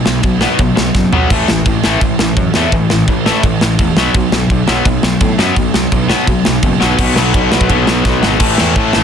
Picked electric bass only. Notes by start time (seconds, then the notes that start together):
0.07 B1
0.24 B1
0.60 B1
0.78 B1
0.95 F#1
1.14 B1
1.30 A1
1.50 A1
1.66 A1
1.85 A1
2.02 A1
2.20 A1
2.37 F#2
2.56 E2
2.73 A1
2.92 A1
3.08 A1
3.43 A1
3.62 A1
3.80 E1
3.96 B1
4.15 B1
4.32 B1
4.50 B1
4.69 B1
4.86 B1
5.03 B1
5.21 A2
5.38 F#2
5.57 B1
5.74 B1
5.92 B1
6.28 B1
6.47 B1
6.63 F#1
6.82 B1
6.99 B1
7.18 B1
7.35 B1
7.54 B1
7.70 B1
7.88 B1
8.05 B1
8.24 G#1
8.41 A1
8.61 E2
8.76 A2
8.96 A1